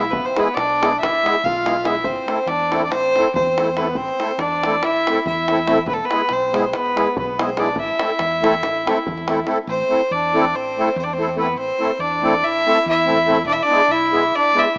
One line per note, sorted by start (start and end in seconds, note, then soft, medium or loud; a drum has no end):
0.00 0.11 B1 medium
0.00 0.13 E4 loud
0.00 0.12 E5 medium
0.11 0.26 E1 loud
0.11 0.28 B3 medium
0.11 0.27 B4 medium
0.11 davul low loud
0.25 0.42 C4 medium
0.25 0.41 C5 medium
0.25 davul high soft
0.36 0.48 G#3 medium
0.36 0.48 B3 medium
0.36 0.48 E4 medium
0.36 0.48 G#4 medium
0.36 0.56 B4 medium
0.36 davul high medium
0.46 0.57 B3 medium
0.46 davul high soft
0.54 1.01 B1 medium
0.54 1.00 D4 medium
0.54 0.98 D5 loud
0.54 davul high medium
0.70 davul high soft
0.81 0.91 G#3 medium
0.81 0.92 B3 medium
0.81 0.92 E4 medium
0.81 0.93 G#4 medium
0.81 davul high medium
0.93 davul high soft
0.99 1.27 E1 medium
0.99 1.41 E4 medium
0.99 1.46 E5 loud
1.03 davul high medium
1.03 davul low medium
1.15 davul high soft
1.24 1.35 G#3 medium
1.24 1.35 B3 medium
1.24 1.35 E4 medium
1.24 1.35 G#4 medium
1.24 davul high medium
1.36 davul high soft
1.44 2.03 B1 medium
1.44 1.85 F4 medium
1.44 1.87 F5 loud
1.44 davul low medium
1.57 davul high soft
1.65 1.76 G#3 soft
1.65 1.76 B3 medium
1.65 1.76 E4 soft
1.65 1.77 G#4 medium
1.65 davul high medium
1.76 davul high soft
1.83 1.95 G#3 medium
1.83 1.95 B3 medium
1.83 1.95 E4 medium
1.83 2.04 E4 medium
1.83 1.95 G#4 medium
1.83 2.06 E5 medium
1.83 davul high medium
1.95 davul high soft
2.03 2.18 A1 loud
2.03 2.48 C4 medium
2.03 2.49 C5 medium
2.03 davul low medium
2.16 davul high soft
2.27 2.38 A3 medium
2.27 2.39 C4 medium
2.27 2.39 E4 medium
2.27 2.39 A4 medium
2.27 davul high medium
2.37 davul high soft
2.46 2.91 E2 medium
2.46 2.85 D4 medium
2.46 2.83 D5 loud
2.46 davul high medium
2.60 davul high soft
2.71 2.82 A3 medium
2.71 2.83 C4 medium
2.71 2.83 E4 medium
2.71 2.83 A4 medium
2.71 davul high medium
2.84 2.91 D4 medium
2.84 2.92 D5 medium
2.90 3.17 A1 medium
2.90 3.34 C5 loud
2.90 davul high medium
2.95 3.37 C4 medium
3.05 davul high soft
3.16 3.27 A3 medium
3.16 3.27 C4 medium
3.16 3.28 E4 medium
3.16 3.28 A4 medium
3.16 davul high medium
3.34 3.94 E2 loud
3.34 3.79 C5 medium
3.34 davul low loud
3.38 3.75 C4 medium
3.58 3.68 A3 medium
3.58 3.68 C4 medium
3.58 3.69 E4 medium
3.58 3.69 A4 medium
3.58 davul high medium
3.68 davul high soft
3.76 3.87 A3 medium
3.76 3.96 B3 medium
3.76 3.87 C4 medium
3.76 3.87 E4 medium
3.76 3.88 A4 medium
3.76 3.98 B4 medium
3.76 davul high medium
3.94 4.09 A1 loud
3.94 4.39 C4 medium
3.94 4.41 C5 loud
3.94 davul low medium
4.08 davul high soft
4.20 4.30 A3 medium
4.20 4.31 C4 medium
4.20 4.31 E4 medium
4.20 4.32 A4 medium
4.20 davul high medium
4.38 4.82 E2 medium
4.38 4.83 D4 medium
4.38 4.85 D5 loud
4.38 davul high medium
4.52 davul high soft
4.63 4.75 A3 medium
4.63 4.75 C4 medium
4.63 4.75 E4 medium
4.63 4.76 A4 medium
4.63 davul high medium
4.82 5.08 A1 medium
4.82 5.26 E4 medium
4.82 5.26 E5 loud
4.82 davul high medium
4.95 davul high soft
5.07 5.18 A3 medium
5.07 5.19 C4 medium
5.07 5.19 E4 medium
5.07 5.20 A4 medium
5.07 davul high medium
5.26 5.88 E2 loud
5.26 5.83 E4 medium
5.26 5.82 E5 medium
5.26 davul low medium
5.48 5.59 A3 medium
5.48 5.60 C4 medium
5.48 5.59 E4 medium
5.48 5.60 A4 medium
5.48 davul high medium
5.57 davul high soft
5.67 5.77 A3 medium
5.67 5.78 C4 medium
5.67 5.78 E4 medium
5.67 5.79 A4 medium
5.67 davul high medium
5.86 6.00 E1 loud
5.86 5.93 B3 medium
5.86 5.95 B4 medium
5.86 davul low medium
5.93 6.01 A3 medium
5.93 6.06 A4 medium
5.99 davul high soft
6.04 6.30 B3 medium
6.04 6.34 B4 loud
6.10 6.21 G#3 medium
6.10 6.22 B3 medium
6.10 6.22 E4 medium
6.10 6.22 G#4 medium
6.10 davul high medium
6.20 davul high soft
6.29 6.74 B1 medium
6.29 6.65 C4 medium
6.29 6.66 C5 medium
6.29 davul high medium
6.42 davul high soft
6.52 6.64 G#3 medium
6.52 6.64 B3 medium
6.52 6.65 E4 medium
6.52 6.65 G#4 medium
6.52 davul high medium
6.66 6.73 C4 medium
6.66 6.76 C5 medium
6.73 7.00 E1 loud
6.73 7.18 B3 medium
6.73 7.17 B4 loud
6.73 davul high medium
6.86 davul high soft
6.95 7.07 G#3 medium
6.95 7.08 B3 medium
6.95 7.08 E4 medium
6.95 7.08 G#4 medium
6.95 davul high medium
7.17 7.76 B1 medium
7.17 7.41 B4 medium
7.17 davul low loud
7.21 7.39 B3 medium
7.38 7.49 G#3 medium
7.38 7.49 B3 medium
7.38 7.50 E4 medium
7.38 7.50 G#4 medium
7.38 7.60 C5 medium
7.38 davul high medium
7.43 7.60 C4 medium
7.49 davul high soft
7.57 7.68 G#3 medium
7.57 7.68 B3 medium
7.57 7.78 D4 medium
7.57 7.68 E4 medium
7.57 7.69 G#4 medium
7.57 7.77 D5 medium
7.57 davul high medium
7.76 7.91 A1 loud
7.76 9.45 E5 loud
7.76 davul low loud
7.80 9.46 E4 medium
7.88 davul high soft
7.99 8.11 A3 medium
7.99 8.11 C4 soft
7.99 8.12 E4 medium
7.99 8.12 A4 medium
7.99 davul high medium
8.09 davul high soft
8.19 8.63 E2 medium
8.19 davul high medium
8.32 davul high soft
8.42 8.54 A3 medium
8.42 8.54 C4 medium
8.42 8.55 E4 medium
8.42 8.55 A4 medium
8.42 davul high medium
8.54 davul high soft
8.63 8.89 A1 loud
8.63 davul high medium
8.63 davul low medium
8.75 davul high soft
8.86 8.98 A3 medium
8.86 8.98 C4 medium
8.86 8.98 E4 medium
8.86 8.99 A4 medium
8.86 davul high medium
8.97 davul high soft
9.07 9.43 E2 medium
9.07 davul low medium
9.18 davul high soft
9.28 9.39 A3 medium
9.28 9.39 C4 medium
9.28 9.40 E4 medium
9.28 9.40 A4 medium
9.28 davul high medium
9.38 davul high soft
9.46 9.58 A3 medium
9.46 9.58 C4 medium
9.46 9.58 E4 medium
9.46 9.58 A4 medium
9.46 davul high medium
9.56 davul high soft
9.67 9.81 A1 loud
9.67 10.09 C4 medium
9.67 10.13 C5 loud
9.88 10.00 A3 medium
9.88 10.01 C4 medium
9.88 10.01 E4 medium
9.88 10.01 A4 medium
10.11 10.55 E2 medium
10.11 10.55 D4 medium
10.11 10.57 D5 medium
10.34 10.45 A3 medium
10.34 10.45 C4 medium
10.34 10.45 E4 medium
10.34 10.45 A4 medium
10.55 10.80 A1 loud
10.55 10.96 C4 medium
10.55 10.98 C5 loud
10.78 10.89 A3 medium
10.78 10.89 C4 medium
10.78 10.89 E4 medium
10.78 10.89 A4 medium
10.96 11.56 E2 loud
10.96 11.04 C4 medium
10.96 11.05 C5 medium
11.04 11.11 D4 medium
11.04 11.15 D5 medium
11.12 11.38 C4 medium
11.12 11.38 C5 medium
11.18 11.29 A3 medium
11.18 11.29 C4 medium
11.18 11.29 E4 medium
11.18 11.30 A4 medium
11.35 11.47 A3 medium
11.35 11.48 C4 medium
11.35 11.48 E4 medium
11.35 11.48 A4 medium
11.35 11.56 B4 medium
11.40 11.56 B3 medium
11.56 11.70 A1 loud
11.56 11.98 C4 medium
11.56 12.01 C5 loud
11.79 11.90 A3 medium
11.79 11.91 C4 soft
11.79 11.91 E4 medium
11.79 11.91 A4 medium
11.99 12.43 E2 medium
11.99 12.44 D4 medium
11.99 12.46 D5 loud
12.22 12.34 A3 medium
12.22 12.34 C4 medium
12.22 12.34 E4 medium
12.22 12.35 A4 medium
12.43 12.69 A1 loud
12.43 12.87 E4 medium
12.43 12.87 E5 loud
12.66 12.77 A3 medium
12.66 12.78 C4 medium
12.66 12.78 E4 medium
12.66 12.78 A4 medium
12.86 13.46 E2 medium
12.86 13.43 E4 medium
12.86 13.43 E5 loud
13.06 13.18 A3 medium
13.06 13.18 C4 soft
13.06 13.18 E4 medium
13.06 13.19 A4 medium
13.26 13.37 A3 medium
13.26 13.38 C4 medium
13.26 13.38 E4 medium
13.26 13.38 A4 medium
13.45 13.59 E1 loud
13.45 13.54 D4 loud
13.45 13.54 D5 loud
13.52 13.61 E4 medium
13.52 13.64 E5 medium
13.62 13.90 D4 loud
13.62 13.93 D5 loud
13.69 13.80 G#3 medium
13.69 13.80 B3 medium
13.69 13.81 E4 medium
13.69 13.82 G#4 medium
13.88 14.32 B1 medium
13.88 14.33 E4 loud
13.88 14.37 E5 loud
14.12 14.23 G#3 medium
14.12 14.23 B3 medium
14.12 14.24 E4 medium
14.12 14.24 G#4 medium
14.32 14.58 E1 loud
14.32 14.60 D5 loud
14.37 14.58 D4 medium
14.54 14.66 G#3 medium
14.54 14.66 B3 medium
14.54 14.67 E4 medium
14.54 14.67 G#4 medium
14.58 14.77 E4 medium
14.58 14.77 E5 loud